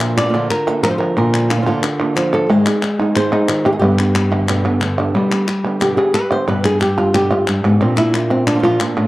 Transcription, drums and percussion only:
0.01 clap medium
0.18 clap medium
0.34 clap soft
0.51 clap medium
0.67 clap soft
0.84 clap medium
1.01 clap soft
1.34 clap medium
1.50 clap medium
1.67 clap soft
1.83 clap medium
2.00 clap soft
2.17 clap medium
2.33 clap medium
2.66 clap medium
2.83 clap medium
3.00 clap soft
3.16 clap loud
3.49 clap medium
3.99 clap medium
4.15 clap medium
4.32 clap soft
4.49 clap medium
4.65 clap soft
4.81 clap medium
4.99 clap soft
5.31 clap medium
5.48 clap medium
5.65 clap soft
5.82 clap medium
5.98 clap soft
6.14 clap medium
6.31 clap medium
6.64 clap medium
6.81 clap medium
6.98 clap soft
7.14 clap medium
7.31 clap medium
7.48 clap medium
7.64 clap medium
7.97 clap medium
8.14 clap medium
8.30 clap soft
8.47 clap medium
8.64 clap soft
8.80 clap loud

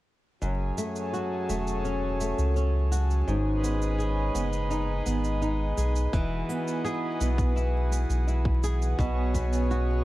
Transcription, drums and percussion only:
0.42 shaker soft
0.78 shaker medium
0.96 shaker soft
1.14 shaker soft
1.49 shaker medium
1.67 shaker soft
1.85 shaker soft
2.21 shaker medium
2.39 shaker soft
2.56 shaker soft
2.92 shaker medium
3.10 shaker soft
3.28 shaker soft
3.64 shaker medium
3.82 shaker soft
4.00 shaker soft
4.35 shaker medium
4.53 shaker soft
4.71 shaker soft
5.06 shaker medium
5.24 shaker soft
5.42 shaker soft
5.78 shaker medium
5.96 shaker soft
6.13 kick loud
6.13 shaker soft
6.50 shaker medium
6.68 shaker soft
6.86 shaker soft
7.21 shaker medium
7.38 kick loud
7.38 shaker soft
7.57 shaker soft
7.92 shaker medium
8.10 shaker soft
8.28 shaker soft
8.45 kick medium
8.64 shaker medium
8.82 shaker soft
8.99 kick loud
8.99 shaker soft
9.34 kick medium
9.34 shaker medium
9.53 shaker soft
9.71 shaker soft

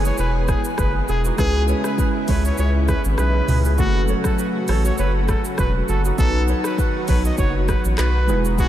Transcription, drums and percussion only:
0.05 shaker medium
0.18 shaker medium
0.48 kick medium
0.48 cross-stick loud
0.48 shaker medium
0.65 shaker medium
0.78 kick medium
0.78 cross-stick loud
0.78 shaker medium
1.08 shaker medium
1.25 shaker medium
1.38 kick loud
1.38 cross-stick medium
1.38 shaker medium
1.68 shaker soft
1.84 cross-stick medium
1.84 shaker medium
1.98 kick loud
1.98 shaker medium
2.28 kick loud
2.28 open hi-hat medium
2.28 shaker medium
2.45 shaker medium
2.58 shaker medium
2.88 kick medium
2.88 cross-stick medium
2.88 shaker medium
3.05 shaker medium
3.18 cross-stick loud
3.18 shaker medium
3.48 mid tom medium
3.48 open hi-hat medium
3.48 shaker medium
3.65 shaker medium
3.78 kick loud
3.78 shaker medium
4.08 shaker soft
4.24 kick medium
4.24 cross-stick medium
4.24 shaker medium
4.39 shaker medium
4.68 cross-stick medium
4.68 open hi-hat medium
4.68 shaker medium
4.85 shaker medium
4.98 shaker medium
5.28 kick medium
5.28 cross-stick loud
5.28 shaker medium
5.45 shaker medium
5.58 kick medium
5.58 cross-stick loud
5.58 shaker medium
5.88 shaker medium
6.05 shaker medium
6.18 kick loud
6.18 shaker medium
6.48 shaker soft
6.64 cross-stick medium
6.64 shaker medium
6.78 kick loud
6.78 shaker medium
7.08 kick loud
7.08 open hi-hat medium
7.08 shaker medium
7.25 shaker medium
7.38 kick loud
7.38 shaker medium
7.68 kick medium
7.68 cross-stick loud
7.68 shaker medium
7.85 shaker medium
7.98 cross-stick medium
7.98 clap loud
7.98 shaker medium
8.29 shaker medium
8.45 shaker medium
8.58 kick loud
8.58 shaker medium

